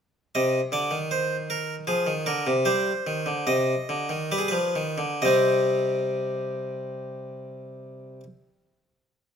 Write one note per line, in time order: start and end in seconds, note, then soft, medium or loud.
0.35 0.59 C3 medium
0.35 0.59 D#5 medium
0.72 0.91 D3 medium
0.72 0.97 D5 medium
0.91 1.84 D#3 medium
1.11 1.35 C5 medium
1.50 1.74 A#4 medium
1.87 2.06 F3 medium
1.87 2.11 G#4 medium
2.07 2.26 D#3 medium
2.26 2.46 D3 medium
2.26 2.51 A#4 medium
2.47 2.65 C3 medium
2.65 2.91 G3 medium
2.65 3.44 C5 medium
3.07 3.26 D#3 medium
3.26 3.46 D3 medium
3.47 3.73 C3 medium
3.47 4.29 D#5 medium
3.89 4.10 D3 medium
4.09 4.31 D#3 medium
4.32 4.53 G3 medium
4.32 4.40 B4 medium
4.38 4.48 G#4 medium
4.48 4.75 F3 medium
4.48 5.20 B4 medium
4.76 4.98 D#3 medium
4.98 5.21 D3 medium
5.22 8.20 C3 medium
5.22 8.23 G3 medium
5.22 8.24 C4 medium
5.22 8.20 D#5 medium